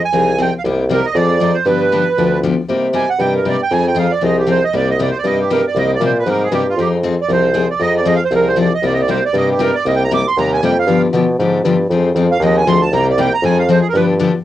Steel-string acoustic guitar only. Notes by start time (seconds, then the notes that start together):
0.13 F3 C4 D#4 G#4
0.38 F3 C4 D#4 G#4
0.65 C3 G3 A#3 D#4 G4
0.89 C3 G3 A#3 D#4 G4
1.16 F3 C4 D#4 G#4
1.40 F3 C4 D#4 G#4
1.65 D3 F3 B3 D4 G4
1.92 D3 F3 B3 D4 G4
2.18 D3 F3 B3 D4 G4
2.43 D3 F3 B3 D4 G4
2.68 C3 G3 A#3 D#4 G4
2.93 C3 G3 A#3 D#4 G4
3.19 C3 G3 A#3 D#4 G4
3.45 C3 G3 A#3 D#4 G4
3.71 F3 C4 D#4 G#4
3.95 F3 C4 D#4 G#4
4.21 F3 C4 D#4 G#4
4.47 F3 C4 D#4 G#4
4.73 C3 G3 A#3 D#4 G4
4.99 C3 G3 A#3 D#4 G4
5.24 C3 G3 A#3 D#4 G4
5.50 C3 G3 A#3 D#4 G4
5.76 C3 G3 A#3 D#4 G4
6.01 C3 G3 A#3 D#4 G4
6.26 C3 G3 A#3 D#4 G4
6.52 C3 G3 A#3 D#4 G4
6.79 F3 C4 D#4 G#4
7.03 F3 C4 D#4 G#4
7.29 F3 C4 D#4 G#4
7.54 F3 C4 D#4 G#4
7.79 F3 C4 D#4 G#4
8.05 F3 C4 D#4 G#4
8.31 F3 C4 D#4 G#4
8.56 F3 C4 D#4 G#4
8.83 C3 G3 A#3 D#4 G4
9.08 C3 G3 A#3 D#4 G4
9.34 C3 G3 A#3 D#4 G4
9.59 C3 G3 A#3 D#4 G4
9.86 C3 G3 A#3 D#4 G4
10.11 C3 G3 A#3 D#4 G4
10.38 C3 G3 A#3 D#4 G4
10.63 C3 G3 A#3 D#4 G4
10.88 D3 F3 B3 D4 G4
11.13 D3 F3 B3 D4 G4
11.40 D3 F3 B3 D4 G4
11.65 D3 F3 B3 D4 G4
11.91 F3 C4 D#4 G#4
12.16 F3 C4 D#4 G#4
12.42 F3 C4 D#4 G#4
12.67 F3 C4 D#4 G#4
12.93 C3 G3 A#3 D#4 G4
13.18 C3 G3 A#3 D#4 G4
13.44 F3 C4 D#4 G#4
13.69 F3 C4 D#4 G#4
13.95 D3 F3 B3 D4 G4
14.19 D3 F3 B3 D4 G4